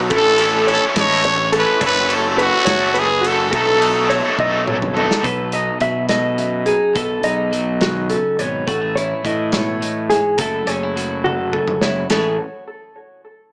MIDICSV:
0, 0, Header, 1, 7, 480
1, 0, Start_track
1, 0, Tempo, 570885
1, 94, Time_signature, 6, 3, 24, 8
1, 11369, End_track
2, 0, Start_track
2, 0, Title_t, "Clean electric guitar"
2, 0, Program_c, 0, 27
2, 0, Note_on_c, 0, 66, 86
2, 82, Note_on_c, 0, 69, 96
2, 91, Note_off_c, 0, 66, 0
2, 565, Note_on_c, 0, 73, 91
2, 568, Note_off_c, 0, 69, 0
2, 804, Note_off_c, 0, 73, 0
2, 804, Note_on_c, 0, 75, 98
2, 1048, Note_off_c, 0, 75, 0
2, 1051, Note_on_c, 0, 73, 81
2, 1278, Note_off_c, 0, 73, 0
2, 1282, Note_on_c, 0, 69, 88
2, 1520, Note_off_c, 0, 69, 0
2, 1520, Note_on_c, 0, 73, 96
2, 1999, Note_off_c, 0, 73, 0
2, 2003, Note_on_c, 0, 71, 92
2, 2226, Note_off_c, 0, 71, 0
2, 2230, Note_on_c, 0, 73, 97
2, 2469, Note_off_c, 0, 73, 0
2, 2472, Note_on_c, 0, 71, 82
2, 2701, Note_on_c, 0, 66, 90
2, 2722, Note_off_c, 0, 71, 0
2, 2953, Note_off_c, 0, 66, 0
2, 2953, Note_on_c, 0, 69, 91
2, 3443, Note_off_c, 0, 69, 0
2, 3445, Note_on_c, 0, 73, 81
2, 3689, Note_off_c, 0, 73, 0
2, 3698, Note_on_c, 0, 75, 92
2, 3932, Note_off_c, 0, 75, 0
2, 3935, Note_on_c, 0, 73, 69
2, 4168, Note_off_c, 0, 73, 0
2, 4168, Note_on_c, 0, 69, 74
2, 4406, Note_off_c, 0, 69, 0
2, 4406, Note_on_c, 0, 71, 80
2, 4652, Note_off_c, 0, 71, 0
2, 4652, Note_on_c, 0, 75, 82
2, 4886, Note_off_c, 0, 75, 0
2, 4889, Note_on_c, 0, 76, 82
2, 5120, Note_off_c, 0, 76, 0
2, 5123, Note_on_c, 0, 75, 88
2, 5600, Note_on_c, 0, 68, 72
2, 5609, Note_off_c, 0, 75, 0
2, 5846, Note_off_c, 0, 68, 0
2, 5846, Note_on_c, 0, 69, 86
2, 6086, Note_on_c, 0, 75, 78
2, 6090, Note_off_c, 0, 69, 0
2, 6571, Note_off_c, 0, 75, 0
2, 6573, Note_on_c, 0, 66, 91
2, 6808, Note_on_c, 0, 69, 77
2, 6814, Note_off_c, 0, 66, 0
2, 7055, Note_off_c, 0, 69, 0
2, 7055, Note_on_c, 0, 73, 81
2, 7289, Note_off_c, 0, 73, 0
2, 7289, Note_on_c, 0, 69, 93
2, 7530, Note_on_c, 0, 73, 83
2, 7533, Note_off_c, 0, 69, 0
2, 7773, Note_off_c, 0, 73, 0
2, 7773, Note_on_c, 0, 75, 78
2, 8005, Note_off_c, 0, 75, 0
2, 8005, Note_on_c, 0, 73, 91
2, 8485, Note_off_c, 0, 73, 0
2, 8489, Note_on_c, 0, 68, 82
2, 8725, Note_off_c, 0, 68, 0
2, 8725, Note_on_c, 0, 69, 88
2, 8973, Note_off_c, 0, 69, 0
2, 8973, Note_on_c, 0, 73, 79
2, 9453, Note_on_c, 0, 66, 92
2, 9456, Note_off_c, 0, 73, 0
2, 9694, Note_on_c, 0, 69, 72
2, 9696, Note_off_c, 0, 66, 0
2, 9931, Note_off_c, 0, 69, 0
2, 9934, Note_on_c, 0, 73, 74
2, 10174, Note_off_c, 0, 73, 0
2, 10178, Note_on_c, 0, 69, 87
2, 10401, Note_off_c, 0, 69, 0
2, 11369, End_track
3, 0, Start_track
3, 0, Title_t, "Trumpet"
3, 0, Program_c, 1, 56
3, 144, Note_on_c, 1, 69, 112
3, 567, Note_off_c, 1, 69, 0
3, 617, Note_on_c, 1, 69, 107
3, 715, Note_off_c, 1, 69, 0
3, 841, Note_on_c, 1, 73, 119
3, 1274, Note_off_c, 1, 73, 0
3, 1335, Note_on_c, 1, 71, 99
3, 1538, Note_off_c, 1, 71, 0
3, 1564, Note_on_c, 1, 71, 114
3, 1773, Note_off_c, 1, 71, 0
3, 1809, Note_on_c, 1, 69, 83
3, 1904, Note_off_c, 1, 69, 0
3, 2037, Note_on_c, 1, 66, 114
3, 2513, Note_on_c, 1, 68, 98
3, 2526, Note_off_c, 1, 66, 0
3, 2748, Note_on_c, 1, 69, 94
3, 2761, Note_off_c, 1, 68, 0
3, 2976, Note_off_c, 1, 69, 0
3, 2981, Note_on_c, 1, 69, 97
3, 3483, Note_off_c, 1, 69, 0
3, 11369, End_track
4, 0, Start_track
4, 0, Title_t, "Overdriven electric guitar"
4, 0, Program_c, 2, 29
4, 0, Note_on_c, 2, 59, 63
4, 0, Note_on_c, 2, 63, 79
4, 0, Note_on_c, 2, 69, 79
4, 83, Note_on_c, 2, 57, 96
4, 85, Note_off_c, 2, 69, 0
4, 89, Note_off_c, 2, 63, 0
4, 91, Note_off_c, 2, 59, 0
4, 92, Note_on_c, 2, 64, 103
4, 94, Note_on_c, 2, 61, 94
4, 95, Note_on_c, 2, 69, 107
4, 327, Note_off_c, 2, 69, 0
4, 328, Note_off_c, 2, 57, 0
4, 328, Note_off_c, 2, 61, 0
4, 331, Note_off_c, 2, 64, 0
4, 337, Note_on_c, 2, 69, 92
4, 338, Note_on_c, 2, 61, 78
4, 341, Note_on_c, 2, 64, 76
4, 350, Note_on_c, 2, 57, 70
4, 554, Note_off_c, 2, 57, 0
4, 560, Note_off_c, 2, 61, 0
4, 562, Note_off_c, 2, 64, 0
4, 564, Note_on_c, 2, 57, 78
4, 566, Note_off_c, 2, 69, 0
4, 570, Note_on_c, 2, 61, 77
4, 572, Note_on_c, 2, 64, 80
4, 577, Note_on_c, 2, 69, 82
4, 798, Note_off_c, 2, 64, 0
4, 800, Note_off_c, 2, 61, 0
4, 801, Note_off_c, 2, 69, 0
4, 808, Note_off_c, 2, 57, 0
4, 808, Note_on_c, 2, 64, 82
4, 810, Note_on_c, 2, 61, 88
4, 811, Note_on_c, 2, 69, 97
4, 820, Note_on_c, 2, 57, 78
4, 1122, Note_off_c, 2, 64, 0
4, 1123, Note_off_c, 2, 61, 0
4, 1124, Note_off_c, 2, 69, 0
4, 1128, Note_off_c, 2, 57, 0
4, 1288, Note_on_c, 2, 69, 83
4, 1291, Note_on_c, 2, 64, 69
4, 1296, Note_on_c, 2, 61, 64
4, 1302, Note_on_c, 2, 57, 64
4, 1518, Note_off_c, 2, 57, 0
4, 1519, Note_off_c, 2, 61, 0
4, 1526, Note_off_c, 2, 64, 0
4, 1526, Note_off_c, 2, 69, 0
4, 1526, Note_on_c, 2, 54, 92
4, 1528, Note_on_c, 2, 57, 91
4, 1529, Note_on_c, 2, 61, 100
4, 1536, Note_on_c, 2, 69, 93
4, 1762, Note_off_c, 2, 69, 0
4, 1767, Note_off_c, 2, 61, 0
4, 1769, Note_off_c, 2, 54, 0
4, 1770, Note_off_c, 2, 57, 0
4, 1772, Note_on_c, 2, 69, 85
4, 1777, Note_on_c, 2, 61, 78
4, 1779, Note_on_c, 2, 57, 78
4, 1781, Note_on_c, 2, 54, 70
4, 2004, Note_off_c, 2, 54, 0
4, 2011, Note_off_c, 2, 57, 0
4, 2012, Note_off_c, 2, 69, 0
4, 2014, Note_on_c, 2, 54, 85
4, 2015, Note_off_c, 2, 61, 0
4, 2021, Note_on_c, 2, 57, 82
4, 2031, Note_on_c, 2, 61, 78
4, 2032, Note_on_c, 2, 69, 98
4, 2251, Note_off_c, 2, 61, 0
4, 2252, Note_off_c, 2, 69, 0
4, 2253, Note_off_c, 2, 54, 0
4, 2256, Note_off_c, 2, 57, 0
4, 2262, Note_on_c, 2, 61, 80
4, 2262, Note_on_c, 2, 69, 100
4, 2266, Note_on_c, 2, 57, 86
4, 2273, Note_on_c, 2, 54, 81
4, 2569, Note_off_c, 2, 61, 0
4, 2569, Note_off_c, 2, 69, 0
4, 2571, Note_off_c, 2, 57, 0
4, 2574, Note_off_c, 2, 54, 0
4, 2745, Note_on_c, 2, 61, 80
4, 2748, Note_on_c, 2, 69, 72
4, 2750, Note_on_c, 2, 57, 64
4, 2755, Note_on_c, 2, 54, 65
4, 2966, Note_off_c, 2, 54, 0
4, 2972, Note_off_c, 2, 69, 0
4, 2973, Note_off_c, 2, 57, 0
4, 2976, Note_on_c, 2, 54, 91
4, 2978, Note_off_c, 2, 61, 0
4, 2981, Note_on_c, 2, 63, 102
4, 2982, Note_on_c, 2, 69, 97
4, 2983, Note_on_c, 2, 57, 90
4, 3187, Note_off_c, 2, 69, 0
4, 3192, Note_off_c, 2, 57, 0
4, 3193, Note_off_c, 2, 63, 0
4, 3194, Note_off_c, 2, 54, 0
4, 3197, Note_on_c, 2, 69, 87
4, 3202, Note_on_c, 2, 57, 72
4, 3203, Note_on_c, 2, 63, 86
4, 3204, Note_on_c, 2, 54, 66
4, 3429, Note_off_c, 2, 54, 0
4, 3429, Note_off_c, 2, 57, 0
4, 3429, Note_off_c, 2, 63, 0
4, 3436, Note_off_c, 2, 69, 0
4, 3439, Note_on_c, 2, 54, 81
4, 3439, Note_on_c, 2, 57, 79
4, 3439, Note_on_c, 2, 63, 85
4, 3446, Note_on_c, 2, 69, 87
4, 3677, Note_off_c, 2, 63, 0
4, 3679, Note_off_c, 2, 54, 0
4, 3679, Note_off_c, 2, 57, 0
4, 3680, Note_off_c, 2, 69, 0
4, 3687, Note_on_c, 2, 63, 77
4, 3689, Note_on_c, 2, 54, 78
4, 3689, Note_on_c, 2, 57, 80
4, 3690, Note_on_c, 2, 69, 98
4, 4002, Note_off_c, 2, 63, 0
4, 4003, Note_off_c, 2, 54, 0
4, 4003, Note_off_c, 2, 57, 0
4, 4003, Note_off_c, 2, 69, 0
4, 4151, Note_on_c, 2, 69, 76
4, 4156, Note_on_c, 2, 57, 71
4, 4160, Note_on_c, 2, 63, 71
4, 4163, Note_on_c, 2, 54, 69
4, 4402, Note_off_c, 2, 69, 0
4, 4404, Note_off_c, 2, 57, 0
4, 4406, Note_off_c, 2, 63, 0
4, 4408, Note_off_c, 2, 54, 0
4, 11369, End_track
5, 0, Start_track
5, 0, Title_t, "Clean electric guitar"
5, 0, Program_c, 3, 27
5, 4398, Note_on_c, 3, 47, 74
5, 4413, Note_on_c, 3, 69, 71
5, 4665, Note_on_c, 3, 63, 58
5, 4891, Note_on_c, 3, 54, 61
5, 5126, Note_off_c, 3, 69, 0
5, 5129, Note_on_c, 3, 69, 62
5, 5363, Note_on_c, 3, 42, 56
5, 5366, Note_off_c, 3, 47, 0
5, 5603, Note_off_c, 3, 63, 0
5, 5613, Note_on_c, 3, 63, 53
5, 5825, Note_off_c, 3, 54, 0
5, 5825, Note_off_c, 3, 63, 0
5, 5842, Note_on_c, 3, 47, 77
5, 5846, Note_off_c, 3, 69, 0
5, 5849, Note_off_c, 3, 42, 0
5, 5849, Note_on_c, 3, 69, 70
5, 6098, Note_on_c, 3, 63, 54
5, 6324, Note_on_c, 3, 54, 64
5, 6568, Note_off_c, 3, 47, 0
5, 6572, Note_on_c, 3, 51, 64
5, 6810, Note_off_c, 3, 51, 0
5, 6813, Note_on_c, 3, 49, 58
5, 7055, Note_off_c, 3, 49, 0
5, 7061, Note_on_c, 3, 47, 64
5, 7262, Note_off_c, 3, 54, 0
5, 7269, Note_off_c, 3, 63, 0
5, 7289, Note_on_c, 3, 45, 79
5, 7291, Note_off_c, 3, 69, 0
5, 7294, Note_on_c, 3, 66, 57
5, 7299, Note_off_c, 3, 47, 0
5, 7412, Note_off_c, 3, 66, 0
5, 7412, Note_on_c, 3, 68, 64
5, 7549, Note_on_c, 3, 64, 60
5, 7782, Note_on_c, 3, 52, 63
5, 8011, Note_on_c, 3, 47, 66
5, 8236, Note_off_c, 3, 45, 0
5, 8246, Note_on_c, 3, 45, 59
5, 8254, Note_off_c, 3, 47, 0
5, 8492, Note_off_c, 3, 45, 0
5, 8499, Note_on_c, 3, 44, 66
5, 8729, Note_off_c, 3, 44, 0
5, 8732, Note_on_c, 3, 42, 76
5, 8735, Note_off_c, 3, 68, 0
5, 8737, Note_off_c, 3, 52, 0
5, 8740, Note_on_c, 3, 54, 62
5, 8746, Note_on_c, 3, 57, 62
5, 8751, Note_off_c, 3, 64, 0
5, 8754, Note_on_c, 3, 64, 58
5, 8758, Note_on_c, 3, 69, 70
5, 8963, Note_off_c, 3, 64, 0
5, 8967, Note_on_c, 3, 61, 61
5, 9109, Note_off_c, 3, 61, 0
5, 9109, Note_on_c, 3, 64, 51
5, 9207, Note_off_c, 3, 54, 0
5, 9217, Note_on_c, 3, 54, 66
5, 9446, Note_off_c, 3, 69, 0
5, 9456, Note_on_c, 3, 69, 63
5, 9698, Note_on_c, 3, 49, 60
5, 9937, Note_off_c, 3, 64, 0
5, 9947, Note_on_c, 3, 64, 61
5, 10149, Note_off_c, 3, 49, 0
5, 10149, Note_off_c, 3, 54, 0
5, 10149, Note_off_c, 3, 69, 0
5, 10154, Note_off_c, 3, 64, 0
5, 10169, Note_off_c, 3, 42, 0
5, 10172, Note_on_c, 3, 45, 61
5, 10179, Note_on_c, 3, 52, 64
5, 10181, Note_off_c, 3, 57, 0
5, 10184, Note_on_c, 3, 61, 63
5, 10191, Note_on_c, 3, 64, 51
5, 10201, Note_on_c, 3, 68, 61
5, 10391, Note_off_c, 3, 45, 0
5, 10395, Note_off_c, 3, 52, 0
5, 10398, Note_off_c, 3, 61, 0
5, 10399, Note_off_c, 3, 64, 0
5, 10406, Note_off_c, 3, 68, 0
5, 11369, End_track
6, 0, Start_track
6, 0, Title_t, "Fingered electric bass"
6, 0, Program_c, 4, 33
6, 0, Note_on_c, 4, 35, 99
6, 91, Note_off_c, 4, 35, 0
6, 91, Note_on_c, 4, 33, 107
6, 654, Note_off_c, 4, 33, 0
6, 808, Note_on_c, 4, 33, 97
6, 1372, Note_off_c, 4, 33, 0
6, 1529, Note_on_c, 4, 30, 106
6, 2093, Note_off_c, 4, 30, 0
6, 2242, Note_on_c, 4, 30, 101
6, 2966, Note_off_c, 4, 30, 0
6, 2966, Note_on_c, 4, 35, 102
6, 3531, Note_off_c, 4, 35, 0
6, 3685, Note_on_c, 4, 35, 98
6, 4251, Note_off_c, 4, 35, 0
6, 4405, Note_on_c, 4, 35, 94
6, 4783, Note_off_c, 4, 35, 0
6, 4882, Note_on_c, 4, 47, 75
6, 5637, Note_off_c, 4, 47, 0
6, 5847, Note_on_c, 4, 35, 99
6, 6038, Note_off_c, 4, 35, 0
6, 6086, Note_on_c, 4, 35, 90
6, 6840, Note_off_c, 4, 35, 0
6, 7055, Note_on_c, 4, 32, 100
6, 7243, Note_off_c, 4, 32, 0
6, 7300, Note_on_c, 4, 33, 95
6, 7674, Note_off_c, 4, 33, 0
6, 7777, Note_on_c, 4, 45, 82
6, 8528, Note_off_c, 4, 45, 0
6, 8738, Note_on_c, 4, 30, 105
6, 8925, Note_off_c, 4, 30, 0
6, 8979, Note_on_c, 4, 30, 101
6, 9729, Note_off_c, 4, 30, 0
6, 9936, Note_on_c, 4, 30, 100
6, 10125, Note_off_c, 4, 30, 0
6, 10185, Note_on_c, 4, 33, 94
6, 10405, Note_off_c, 4, 33, 0
6, 11369, End_track
7, 0, Start_track
7, 0, Title_t, "Drums"
7, 85, Note_on_c, 9, 51, 103
7, 91, Note_on_c, 9, 36, 116
7, 169, Note_off_c, 9, 51, 0
7, 176, Note_off_c, 9, 36, 0
7, 319, Note_on_c, 9, 51, 90
7, 403, Note_off_c, 9, 51, 0
7, 572, Note_on_c, 9, 51, 84
7, 656, Note_off_c, 9, 51, 0
7, 806, Note_on_c, 9, 51, 106
7, 807, Note_on_c, 9, 36, 82
7, 811, Note_on_c, 9, 38, 109
7, 890, Note_off_c, 9, 51, 0
7, 891, Note_off_c, 9, 36, 0
7, 895, Note_off_c, 9, 38, 0
7, 1043, Note_on_c, 9, 51, 83
7, 1127, Note_off_c, 9, 51, 0
7, 1283, Note_on_c, 9, 51, 85
7, 1367, Note_off_c, 9, 51, 0
7, 1521, Note_on_c, 9, 51, 117
7, 1524, Note_on_c, 9, 36, 115
7, 1605, Note_off_c, 9, 51, 0
7, 1608, Note_off_c, 9, 36, 0
7, 1765, Note_on_c, 9, 51, 82
7, 1849, Note_off_c, 9, 51, 0
7, 2009, Note_on_c, 9, 51, 86
7, 2093, Note_off_c, 9, 51, 0
7, 2240, Note_on_c, 9, 51, 104
7, 2244, Note_on_c, 9, 36, 84
7, 2245, Note_on_c, 9, 38, 114
7, 2324, Note_off_c, 9, 51, 0
7, 2328, Note_off_c, 9, 36, 0
7, 2329, Note_off_c, 9, 38, 0
7, 2482, Note_on_c, 9, 51, 82
7, 2566, Note_off_c, 9, 51, 0
7, 2727, Note_on_c, 9, 51, 78
7, 2811, Note_off_c, 9, 51, 0
7, 2967, Note_on_c, 9, 36, 124
7, 2967, Note_on_c, 9, 51, 94
7, 3051, Note_off_c, 9, 36, 0
7, 3051, Note_off_c, 9, 51, 0
7, 3210, Note_on_c, 9, 51, 88
7, 3294, Note_off_c, 9, 51, 0
7, 3450, Note_on_c, 9, 51, 74
7, 3534, Note_off_c, 9, 51, 0
7, 3688, Note_on_c, 9, 36, 82
7, 3772, Note_off_c, 9, 36, 0
7, 3931, Note_on_c, 9, 47, 82
7, 4015, Note_off_c, 9, 47, 0
7, 4055, Note_on_c, 9, 45, 89
7, 4139, Note_off_c, 9, 45, 0
7, 4177, Note_on_c, 9, 43, 99
7, 4261, Note_off_c, 9, 43, 0
7, 4296, Note_on_c, 9, 38, 98
7, 4380, Note_off_c, 9, 38, 0
7, 4409, Note_on_c, 9, 36, 112
7, 4409, Note_on_c, 9, 42, 95
7, 4493, Note_off_c, 9, 36, 0
7, 4493, Note_off_c, 9, 42, 0
7, 4643, Note_on_c, 9, 42, 69
7, 4727, Note_off_c, 9, 42, 0
7, 4881, Note_on_c, 9, 42, 71
7, 4886, Note_on_c, 9, 36, 72
7, 4965, Note_off_c, 9, 42, 0
7, 4970, Note_off_c, 9, 36, 0
7, 5117, Note_on_c, 9, 42, 91
7, 5122, Note_on_c, 9, 38, 99
7, 5202, Note_off_c, 9, 42, 0
7, 5207, Note_off_c, 9, 38, 0
7, 5365, Note_on_c, 9, 42, 61
7, 5450, Note_off_c, 9, 42, 0
7, 5599, Note_on_c, 9, 42, 68
7, 5684, Note_off_c, 9, 42, 0
7, 5847, Note_on_c, 9, 42, 90
7, 5849, Note_on_c, 9, 36, 97
7, 5931, Note_off_c, 9, 42, 0
7, 5933, Note_off_c, 9, 36, 0
7, 6082, Note_on_c, 9, 42, 67
7, 6166, Note_off_c, 9, 42, 0
7, 6330, Note_on_c, 9, 42, 61
7, 6414, Note_off_c, 9, 42, 0
7, 6564, Note_on_c, 9, 42, 74
7, 6570, Note_on_c, 9, 38, 99
7, 6649, Note_off_c, 9, 42, 0
7, 6654, Note_off_c, 9, 38, 0
7, 6807, Note_on_c, 9, 42, 62
7, 6891, Note_off_c, 9, 42, 0
7, 7054, Note_on_c, 9, 42, 64
7, 7138, Note_off_c, 9, 42, 0
7, 7295, Note_on_c, 9, 36, 113
7, 7303, Note_on_c, 9, 42, 79
7, 7379, Note_off_c, 9, 36, 0
7, 7387, Note_off_c, 9, 42, 0
7, 7543, Note_on_c, 9, 42, 69
7, 7627, Note_off_c, 9, 42, 0
7, 7774, Note_on_c, 9, 36, 73
7, 7780, Note_on_c, 9, 42, 68
7, 7858, Note_off_c, 9, 36, 0
7, 7864, Note_off_c, 9, 42, 0
7, 8006, Note_on_c, 9, 42, 79
7, 8011, Note_on_c, 9, 38, 104
7, 8090, Note_off_c, 9, 42, 0
7, 8095, Note_off_c, 9, 38, 0
7, 8259, Note_on_c, 9, 42, 73
7, 8343, Note_off_c, 9, 42, 0
7, 8496, Note_on_c, 9, 42, 71
7, 8580, Note_off_c, 9, 42, 0
7, 8727, Note_on_c, 9, 42, 101
7, 8733, Note_on_c, 9, 36, 103
7, 8811, Note_off_c, 9, 42, 0
7, 8817, Note_off_c, 9, 36, 0
7, 8972, Note_on_c, 9, 42, 76
7, 9056, Note_off_c, 9, 42, 0
7, 9225, Note_on_c, 9, 42, 71
7, 9309, Note_off_c, 9, 42, 0
7, 9466, Note_on_c, 9, 48, 58
7, 9550, Note_off_c, 9, 48, 0
7, 9696, Note_on_c, 9, 36, 72
7, 9780, Note_off_c, 9, 36, 0
7, 9817, Note_on_c, 9, 45, 78
7, 9901, Note_off_c, 9, 45, 0
7, 9934, Note_on_c, 9, 38, 92
7, 10018, Note_off_c, 9, 38, 0
7, 10172, Note_on_c, 9, 53, 84
7, 10177, Note_on_c, 9, 38, 94
7, 10256, Note_off_c, 9, 53, 0
7, 10261, Note_off_c, 9, 38, 0
7, 11369, End_track
0, 0, End_of_file